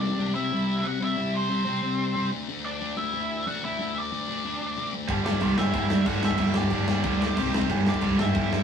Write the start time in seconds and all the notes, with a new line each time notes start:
Already playing: C3 G3 C4
0.00 D4 D5
0.19 C3 G3 C4
0.34 C3 G3 C4 E4 E5
0.52 C3 G3 C4
0.84 C3 G3 C4 F#4 F#5
1.00 C3 G3 C4 E4
1.04 E5
1.16 C3 G3 C4
1.34 C4 C5
1.49 C3 G3 C4
1.65 C3 G3 C4
1.82 C3 G3 C4
2.15 C3 G3 C4
2.31 D3 A3 D4
2.48 D3 A3 D4
2.65 D4 D5
2.81 D3 A3 D4
2.97 D3 A3 D4 E4 E5
3.13 D3 A3 D4
3.47 D3 A3 D4 F#4 F#5
3.63 D3 A3 D4 E4 E5
3.79 D3 A3 D4
3.98 D4 D5
4.12 D3 A3 D4
4.29 D3 A3 D4
4.45 D3 A3 D4
4.77 D3 A3 D4
4.93 D3 A3 D4
5.09 G1 G2 D3 G3, kick, crash
5.25 D4 D5, snare
5.33 kick
5.40 C2 G2 D3 G3, kick, crash
5.57 G1 G2 D3 G3 E4 E5, snare
5.74 G1 G2 D3 G3, kick, crash
5.90 G2, snare
6.06 G1 G2 D3 G3 F#4 F#5, kick, crash
6.22 G1 G2 D3 G3 E4 E5, snare
6.31 kick
6.38 G1 G2 D3 G3, kick, crash
6.54 G1 D4 D5, snare
6.63 kick
6.70 G1 G2 D3 G3, kick, crash
6.87 G1 G2 D3 G3, snare
7.03 D2 G2 D3 G3, kick, crash
7.22 snare
7.37 C2 C3 G3 C4, kick, crash
7.53 C2 C3 G3 C4, snare
7.62 kick
7.69 G1 G2 D3 G3, kick, crash
7.86 D4 D5, snare
7.94 kick
8.01 C2 G2 D3 G3 D4 D5, kick, crash
8.19 G1 G2 D3 G3 E4 E5, snare
8.35 G1 G2 D3 G3, kick, crash
8.53 G2, snare